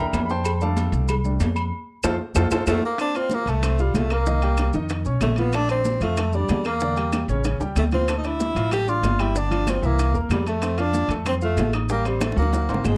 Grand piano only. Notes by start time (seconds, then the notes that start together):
Already playing: E3 A#3 D4
0.00 A#4 E5 G5 A#5
0.26 B5
0.31 C5 G5 A5 C6
0.61 G3 A3 D4 A4 D5 F5 A5
1.25 G3 A3 D4
2.04 F4 A4 C5
2.36 F4 A4 C5
2.52 F4 A4 C5
2.68 F4 A4 C5
3.00 C4 C5 C6
3.15 F4 F5 F6
3.48 A3 A4 A5
3.63 C4 C5 C6
3.79 F4 F5 F6
4.11 A#3 A#4 A#5
4.27 D#3 D#4 D#5
4.43 G3 G4 G5
4.74 D#3 D#4 D#5
5.06 C#4 C#5 C#6
5.38 F3 F4 F5
5.54 A3 A4 A5
5.69 D4 D5 D6
6.02 F3 F4 F5
6.18 A3 A4 A5
6.35 D4 D5 D6
6.65 A#3 A#4 A#5
6.81 D3 D4 D5
6.96 G3 G4 G5
7.29 C#3 C#4 C#5
7.60 G3 G4 G5
7.92 F3 F4 F5
8.08 A3 A4 A5
8.25 D4 D5 D6
8.56 F3 F4 F5
8.72 A3 A4 A5
8.87 D4 D5 D6
9.19 G3 G4 G5
9.35 D3 D4 D5
9.51 F3 F4 F5
9.82 E3 E4 E5
10.14 A#3 A#4 A#5
10.46 A3 A4 A5
10.62 C4 C5 C6
10.78 F4 F5 F6
11.10 A3 A4 A5
11.26 C4 C5 C6
11.42 F4 F5 F6
11.74 D#4 D#5 D#6
11.90 G3 G4 G5
12.05 C4 C5 C6
12.36 F#3 F#4 F#5
12.69 C4 C5 C6